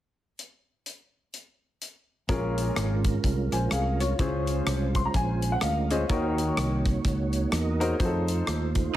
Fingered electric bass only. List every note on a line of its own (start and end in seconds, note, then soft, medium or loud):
2.29 2.69 A#1 loud
2.76 3.17 G#1 medium
3.24 3.48 C2 medium
3.52 3.69 A#1 medium
3.71 4.12 C2 medium
4.19 4.60 C#2 medium
4.66 5.07 C2 medium
5.14 5.55 A#1 medium
5.62 6.03 D2 medium
6.10 6.50 D#2 loud
6.57 6.97 C2 medium
7.05 7.45 C#2 medium
7.52 7.92 E2 medium
8.00 8.40 F2 medium
8.48 8.88 D#2 medium